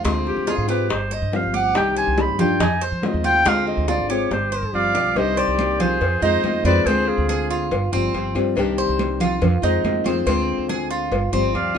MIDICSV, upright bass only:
0, 0, Header, 1, 2, 480
1, 0, Start_track
1, 0, Key_signature, -3, "minor"
1, 0, Tempo, 425834
1, 54, Time_signature, 4, 2, 24, 8
1, 13280, End_track
2, 0, Start_track
2, 0, Title_t, "Upright bass"
2, 0, Program_c, 0, 32
2, 52, Note_on_c, 0, 38, 108
2, 395, Note_off_c, 0, 38, 0
2, 412, Note_on_c, 0, 38, 98
2, 641, Note_off_c, 0, 38, 0
2, 653, Note_on_c, 0, 44, 84
2, 995, Note_off_c, 0, 44, 0
2, 1015, Note_on_c, 0, 31, 96
2, 1356, Note_off_c, 0, 31, 0
2, 1374, Note_on_c, 0, 43, 103
2, 1602, Note_off_c, 0, 43, 0
2, 1614, Note_on_c, 0, 31, 91
2, 1956, Note_off_c, 0, 31, 0
2, 1976, Note_on_c, 0, 36, 104
2, 2317, Note_off_c, 0, 36, 0
2, 2335, Note_on_c, 0, 36, 90
2, 2563, Note_off_c, 0, 36, 0
2, 2572, Note_on_c, 0, 43, 87
2, 2915, Note_off_c, 0, 43, 0
2, 2930, Note_on_c, 0, 41, 98
2, 3274, Note_off_c, 0, 41, 0
2, 3291, Note_on_c, 0, 53, 93
2, 3521, Note_off_c, 0, 53, 0
2, 3534, Note_on_c, 0, 39, 83
2, 3876, Note_off_c, 0, 39, 0
2, 3894, Note_on_c, 0, 38, 100
2, 4236, Note_off_c, 0, 38, 0
2, 4253, Note_on_c, 0, 38, 91
2, 4482, Note_off_c, 0, 38, 0
2, 4495, Note_on_c, 0, 32, 86
2, 4837, Note_off_c, 0, 32, 0
2, 4855, Note_on_c, 0, 31, 100
2, 5197, Note_off_c, 0, 31, 0
2, 5214, Note_on_c, 0, 43, 99
2, 5328, Note_off_c, 0, 43, 0
2, 5333, Note_on_c, 0, 31, 71
2, 5550, Note_off_c, 0, 31, 0
2, 5574, Note_on_c, 0, 35, 84
2, 5791, Note_off_c, 0, 35, 0
2, 5816, Note_on_c, 0, 36, 104
2, 6158, Note_off_c, 0, 36, 0
2, 6171, Note_on_c, 0, 36, 84
2, 6743, Note_off_c, 0, 36, 0
2, 6774, Note_on_c, 0, 41, 101
2, 7003, Note_off_c, 0, 41, 0
2, 7011, Note_on_c, 0, 41, 99
2, 7241, Note_off_c, 0, 41, 0
2, 7488, Note_on_c, 0, 41, 102
2, 7719, Note_off_c, 0, 41, 0
2, 7727, Note_on_c, 0, 38, 92
2, 8073, Note_off_c, 0, 38, 0
2, 8092, Note_on_c, 0, 38, 91
2, 8663, Note_off_c, 0, 38, 0
2, 8694, Note_on_c, 0, 31, 121
2, 8922, Note_off_c, 0, 31, 0
2, 8938, Note_on_c, 0, 31, 105
2, 9164, Note_off_c, 0, 31, 0
2, 9175, Note_on_c, 0, 31, 88
2, 9403, Note_off_c, 0, 31, 0
2, 9415, Note_on_c, 0, 43, 107
2, 9643, Note_off_c, 0, 43, 0
2, 9659, Note_on_c, 0, 36, 97
2, 9999, Note_off_c, 0, 36, 0
2, 10017, Note_on_c, 0, 36, 93
2, 10586, Note_off_c, 0, 36, 0
2, 10617, Note_on_c, 0, 41, 114
2, 10844, Note_off_c, 0, 41, 0
2, 10854, Note_on_c, 0, 41, 93
2, 11082, Note_off_c, 0, 41, 0
2, 11091, Note_on_c, 0, 41, 82
2, 11321, Note_off_c, 0, 41, 0
2, 11334, Note_on_c, 0, 41, 98
2, 11562, Note_off_c, 0, 41, 0
2, 11572, Note_on_c, 0, 38, 96
2, 11915, Note_off_c, 0, 38, 0
2, 11929, Note_on_c, 0, 38, 84
2, 12502, Note_off_c, 0, 38, 0
2, 12530, Note_on_c, 0, 31, 111
2, 12760, Note_off_c, 0, 31, 0
2, 12773, Note_on_c, 0, 31, 105
2, 13002, Note_off_c, 0, 31, 0
2, 13011, Note_on_c, 0, 38, 70
2, 13229, Note_off_c, 0, 38, 0
2, 13280, End_track
0, 0, End_of_file